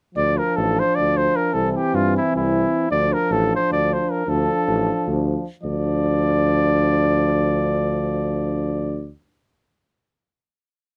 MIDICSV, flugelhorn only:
0, 0, Header, 1, 2, 480
1, 0, Start_track
1, 0, Key_signature, -1, "minor"
1, 0, Tempo, 389105
1, 210, Time_signature, 7, 3, 24, 8
1, 13531, End_track
2, 0, Start_track
2, 0, Title_t, "Flugelhorn"
2, 0, Program_c, 0, 56
2, 205, Note_on_c, 0, 74, 96
2, 468, Note_on_c, 0, 70, 83
2, 486, Note_off_c, 0, 74, 0
2, 695, Note_on_c, 0, 69, 83
2, 713, Note_off_c, 0, 70, 0
2, 979, Note_on_c, 0, 72, 89
2, 997, Note_off_c, 0, 69, 0
2, 1175, Note_on_c, 0, 74, 74
2, 1193, Note_off_c, 0, 72, 0
2, 1446, Note_on_c, 0, 72, 85
2, 1465, Note_off_c, 0, 74, 0
2, 1679, Note_on_c, 0, 70, 75
2, 1698, Note_off_c, 0, 72, 0
2, 1898, Note_on_c, 0, 69, 82
2, 1917, Note_off_c, 0, 70, 0
2, 2117, Note_off_c, 0, 69, 0
2, 2117, Note_on_c, 0, 69, 46
2, 2173, Note_on_c, 0, 67, 89
2, 2192, Note_off_c, 0, 69, 0
2, 2406, Note_on_c, 0, 65, 82
2, 2425, Note_off_c, 0, 67, 0
2, 2668, Note_off_c, 0, 65, 0
2, 2675, Note_on_c, 0, 64, 82
2, 2887, Note_off_c, 0, 64, 0
2, 2917, Note_on_c, 0, 64, 77
2, 3552, Note_off_c, 0, 64, 0
2, 3593, Note_on_c, 0, 74, 94
2, 3865, Note_on_c, 0, 70, 87
2, 3884, Note_off_c, 0, 74, 0
2, 4098, Note_on_c, 0, 69, 86
2, 4117, Note_off_c, 0, 70, 0
2, 4363, Note_off_c, 0, 69, 0
2, 4385, Note_on_c, 0, 72, 90
2, 4582, Note_off_c, 0, 72, 0
2, 4596, Note_on_c, 0, 74, 81
2, 4852, Note_on_c, 0, 72, 69
2, 4871, Note_off_c, 0, 74, 0
2, 5073, Note_on_c, 0, 70, 67
2, 5092, Note_off_c, 0, 72, 0
2, 5293, Note_on_c, 0, 69, 81
2, 5312, Note_off_c, 0, 70, 0
2, 6515, Note_off_c, 0, 69, 0
2, 6952, Note_on_c, 0, 74, 81
2, 11228, Note_off_c, 0, 74, 0
2, 13531, End_track
0, 0, End_of_file